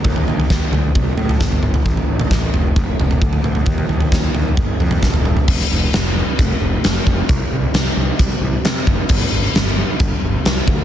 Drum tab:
CC |----------------|----------------|----------------|x---------------|
HH |----------------|----------------|----------------|----x---x---x---|
SD |----o-------o---|----o-----------|----o-------o---|-o--o-------o---|
T2 |-----------oo-o-|---o--------o-o-|-----------oo-o-|----------------|
FT |oooo--o-o-oo-o-o|oo-o--o-o-oo-o-o|oooo--o-o-oo-o-o|----------------|
BD |o---o---o---o---|o---o---o---o---|o---o---o---o---|o-------o-----o-|

CC |----------------|x---------------|
HH |x---x---x---x---|----x---x---x---|
SD |----o-------o---|----o-------o---|
T2 |----------------|----------------|
FT |----------------|----------------|
BD |o-------o-----o-|o-------o-----o-|